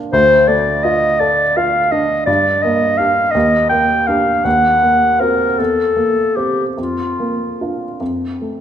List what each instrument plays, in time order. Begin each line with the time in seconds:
Already playing: grand piano A#1 A#3 D4 F4 A#4
0.13 grand piano D2, clarinet C5
0.48 grand piano A3, clarinet D5
0.84 grand piano F4, clarinet D#5
1.20 grand piano A4, clarinet D5
1.57 grand piano F4, clarinet F5
1.92 grand piano D4, clarinet D#5
2.26 grand piano G2, clarinet D5
2.63 grand piano A#3, clarinet D#5
2.98 grand piano D4 G4, clarinet F5
3.31 grand piano D#2, clarinet D#5
3.69 grand piano A#3, clarinet G5
4.07 grand piano D4 G4, clarinet F5
4.44 grand piano D#2, clarinet F#5
4.83 grand piano A#3
5.20 grand piano C4 F#4, clarinet A#4
5.58 grand piano E2, clarinet A4
5.96 grand piano A#3
6.36 grand piano C4 G4, clarinet G4
6.77 grand piano F2, clarinet F4
7.20 grand piano A#3
7.61 grand piano D4 F4
8.00 grand piano F2
8.41 grand piano A3